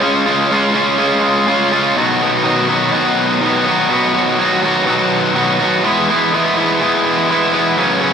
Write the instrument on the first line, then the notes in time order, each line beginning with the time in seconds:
overdriven electric guitar
0.01 C#3 G#3 C#4 F4
0.25 G#3 C#4 F4
0.51 C#3 G#3 C#4 F4
0.74 G#3 C#4 F4
0.98 C#3 G#3 C#4 F4
1.46 C#3 G#3 C#4 F4
1.72 G#3 C#4 F4
1.95 B2 D#3 F#3 B3 F#4
2.19 F#3 B3 F#4
2.43 D#3 F#3 B3 F#4
2.67 F#3 B3 F#4
2.92 B2 D#3 F#3 B3 F#4
3.41 D#3 F#3 B3 F#4
3.65 F#3 B3 F#4
3.88 B2 D#3 F#3 B3 F#4
4.14 F#3 B3 F#4
4.39 D#3 F#3 B3 F#4
4.63 F#3 B3 F#4
4.86 B2 D#3 F#3 B3 F#4
5.34 D#3 F#3 B3 F#4
5.58 F#3 B3 F#4
5.83 E3 G#3 B3 E4
6.09 G#3 B3 E4
6.33 E3 G#3 B3 E4
6.57 G#3 B3 E4
6.81 E3 G#3 B3 E4
7.29 E3 G#3 B3 E4
7.52 G#3 B3 E4
7.76 F#2 C#3 F#3 B3 C#4
8.01 F#3 B3 C#4